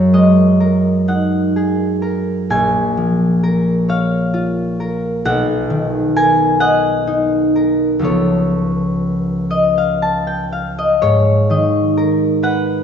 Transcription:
Already playing: F#2 G#3 G#4 A#4 C#5 D#5
0.13 G#3 D#5
0.60 A#4
1.08 D#4 F#5
1.56 G#4
2.02 A#4
2.50 A#1 G#5
2.97 F3
3.43 A#4
3.89 C#5 F5
4.34 F4
4.80 A#4
5.25 B1 F#5
5.70 D#3
6.16 A#4 G#5
6.60 D#5 F#5
7.07 D#4
7.56 A#4
7.99 C#2 F3 B3 A4
8.04 C#5
9.51 D#5
9.78 F5
10.02 A5
10.27 G5
10.52 F5
10.78 D#5
11.02 G#2 C#5
11.50 D#3 D#5
11.97 A#4
12.43 B4 F#5

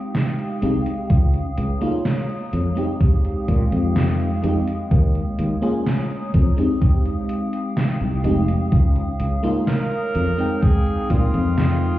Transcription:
Already playing: G#3 C4 D#4 G4 F5 G5 D#6
0.15 snare, closed hi-hat
0.39 closed hi-hat
0.62 C2 G#3 C4 D#4 G4, closed hi-hat
0.86 closed hi-hat
1.10 C#2 C#5 A#5, kick, closed hi-hat
1.34 closed hi-hat
1.58 C#2, closed hi-hat
1.81 G#3 A#3 D#4 F4, closed hi-hat
2.05 snare, closed hi-hat
2.29 closed hi-hat
2.53 F2 G#3 F5 G5, closed hi-hat
2.75 G#3 C4 D#4 G4, closed hi-hat
3.01 kick, closed hi-hat
3.25 closed hi-hat
3.48 A#2, kick, closed hi-hat
3.72 F2, closed hi-hat
3.96 snare, closed hi-hat
4.20 closed hi-hat
4.42 F2 G#3 C4 D#4 G4, closed hi-hat
4.67 closed hi-hat
4.91 D#2 C#5 A#5 D#6, kick, closed hi-hat
5.15 closed hi-hat
5.39 D#2, closed hi-hat
5.62 A#3 C#4 F4 G#4, closed hi-hat
5.86 snare, closed hi-hat
6.10 closed hi-hat
6.34 F2 F5 G5, kick, closed hi-hat
6.56 G#3 C4 D#4 G4, closed hi-hat
6.82 kick, closed hi-hat
7.05 closed hi-hat
7.29 closed hi-hat
7.53 closed hi-hat
7.77 snare, closed hi-hat
8.01 C2, closed hi-hat
8.24 F1 G#3 C4 D#4 G4, closed hi-hat
8.48 closed hi-hat
8.72 C#2 C#5 A#5, kick, closed hi-hat
8.96 closed hi-hat
9.20 C#2, closed hi-hat
9.43 G#3 A#3 D#4 F4, closed hi-hat
9.67 A#4, snare, closed hi-hat
9.91 closed hi-hat
10.15 F2 G#3 G5, closed hi-hat
10.37 G#3 C4 D#4 G5, closed hi-hat
10.63 G#4, kick, closed hi-hat
10.86 closed hi-hat
11.10 A#2 F4, kick, closed hi-hat
11.34 F2, closed hi-hat
11.58 snare, closed hi-hat
11.82 closed hi-hat

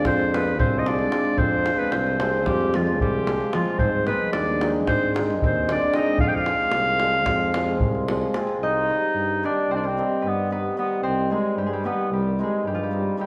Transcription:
Already playing: F3 G#3 B3 D4
0.05 F2 C4 C5, davul high, davul low
0.20 davul high
0.34 F3 G#3 B3 C4 F4 B4, davul high
0.48 davul high
0.59 C2 C4 C5, davul low
0.78 D#4 D#5
0.86 F3 G#3 C4 D4 F4 D5, davul high
0.99 davul high
1.12 F3 G#3 C4 F4, davul high
1.25 davul high
1.37 F2 C4 C5, davul low
1.66 F3 G#3 C4 F4, davul high
1.78 B3 B4
1.92 C2 C4 C5, davul high
2.07 davul high
2.20 F3 G#3 C4 F4 C5, davul high
2.46 F2 G3 G4, davul high, davul low
2.61 davul high
2.74 F3 G#3 C4 F4, davul high
2.87 davul high
3.00 C2 G3 G4, davul low
3.27 F3 G#3 C4 F4, davul high
3.41 davul high
3.53 F3 G#3 C4 F4, davul high
3.66 davul high
3.79 G#2 C4 C5, davul low
4.07 D#3 G#3 B3 C4 D#4 B4, davul high
4.32 D#2 D4 D5, davul high
4.48 davul high
4.61 D#3 G#3 C4 D#4, davul high
4.87 G#2 C4 C5, davul high, davul low
5.03 davul high
5.14 D#3 G#3 C4 D#4, davul high
5.30 davul high
5.41 D#2 C4, davul low
5.46 C5
5.68 D#3 G#3 C4 D4 D#4 D5, davul high
5.82 davul high
5.94 D#3 G#3 C4 D#4 D#5, davul high
5.98 D#4
6.06 davul high
6.18 F2 F5, davul low
6.23 F4
6.28 G4 G5
6.33 F5, davul high
6.37 F4
6.46 F3 G#3 C4 F4, davul high
6.72 C2, davul high
6.85 davul high
7.00 F3 G#3 C4 F4, davul high
7.13 davul high
7.26 F2, davul high, davul low
7.54 F3 G#3 C4 F4, davul high
7.80 C2, davul low
7.95 davul high
8.08 F3 G#3 C4 F4, davul high
8.21 davul high
8.34 F3 G#3 C4 F4, davul high
8.47 davul high
8.60 C2 D#5
8.64 D#4
8.89 D#3 G3 C4 D#4
9.15 G2
9.43 D#3 G3 C4 D4 D#4 D5
9.69 C2 C4 C5
9.75 D4 D5
9.83 C4 C5
9.97 D#3 G3 C4 D#4
10.22 G2 B4
10.27 B3
10.50 D#3 G3 B3 C4 D#4 B4
10.77 D#3 G3 B3 C4 D#4 B4
11.02 C2 C4 C5
11.30 D#3 G3 G#3 C4 D#4 G#4
11.57 G2 G3 G4
11.63 G#3 G#4
11.71 G3 G4
11.84 D#3 G3 B3 C4 D#4 B4
12.11 C2 G3 G4
12.39 D#3 G3 G#3 C4 D#4
12.43 G#4
12.66 G2 G3 G4
12.72 F3 F4
12.80 G3 G4
12.91 D#3 G3 C4 D#4
13.17 D#3 G3 C4 D#4 G4

